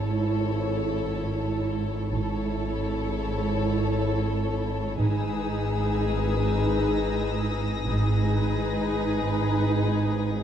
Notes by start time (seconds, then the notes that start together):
Already playing: G#1 G#2 E4 A4 C#5
2.12 G#1 G#2 E4 A4 C#5
4.99 G#1 G#2 D#4 G#4 B4 D#6 E6
6.45 A#6
7.87 G#1 G#2 D#4 G#4 B4
8.49 D#6